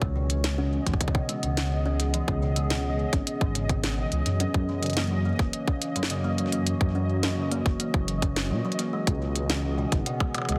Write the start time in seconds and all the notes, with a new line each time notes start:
Already playing: E3 C#4 F#4 C#5 D#5
0.02 C#2 G#3, kick
0.16 B2
0.24 B3
0.30 closed hi-hat
0.44 snare, closed hi-hat
0.58 C#4
0.86 G#1 E3, kick, closed hi-hat
0.94 kick
1.01 C#3, kick, closed hi-hat
1.08 kick
1.15 B2, kick
1.22 G#4
1.29 G#3, closed hi-hat
1.43 C#2 B2, closed hi-hat
1.57 snare, closed hi-hat
1.86 C#4
2.00 closed hi-hat
2.14 E3, closed hi-hat
2.28 C#2 C#3, kick
2.42 B2
2.56 G#3, closed hi-hat
2.70 B2, snare, closed hi-hat
3.13 G#1 C#4, kick, closed hi-hat
3.27 closed hi-hat
3.41 G#1 E3, kick
3.55 C#3, closed hi-hat
3.69 B2, kick, closed hi-hat
3.84 G#3, snare, closed hi-hat
3.98 B2
4.12 C#2, closed hi-hat
4.26 F#2, closed hi-hat
4.40 E3 C#4, closed hi-hat
4.54 F#2, kick
4.61 A#3
4.69 E3
4.83 C#3, closed hi-hat
4.86 closed hi-hat
4.90 closed hi-hat
4.93 snare, closed hi-hat
4.97 A#3, closed hi-hat
5.04 closed hi-hat
5.07 F#3, closed hi-hat
5.25 A#3
5.39 F#1, kick
5.53 closed hi-hat
5.67 C#4 F#4, kick
5.82 closed hi-hat
5.96 F#2 E3, closed hi-hat
6.03 snare
6.10 C#3, closed hi-hat
6.24 A#3
6.38 F#3, closed hi-hat
6.52 A#3, closed hi-hat
6.67 closed hi-hat
6.81 F#2, kick
6.95 C#4
7.23 E3, snare, closed hi-hat
7.37 C#3
7.52 A#3, closed hi-hat
7.66 F#1 F#3, kick
7.80 A#3, closed hi-hat
7.94 F#1, kick
8.08 closed hi-hat
8.22 C#4, kick, closed hi-hat
8.36 snare, closed hi-hat
8.51 A#2 F#3
8.65 F#3
8.72 closed hi-hat
8.79 A#3, closed hi-hat
8.93 G#3
9.07 C#2 B2, kick, closed hi-hat
9.26 B3
9.32 C#4, closed hi-hat
9.50 C#4, snare, closed hi-hat
9.62 G#4
9.78 B2
9.92 G#1 C#3, kick, closed hi-hat
9.97 C#5
10.06 B2, closed hi-hat
10.20 G#3, kick, percussion blips
10.35 B2, closed hi-hat, percussion blips
10.38 percussion blips
10.42 percussion blips
10.45 closed hi-hat, percussion blips
10.49 C#2, percussion blips
10.52 percussion blips
10.56 percussion blips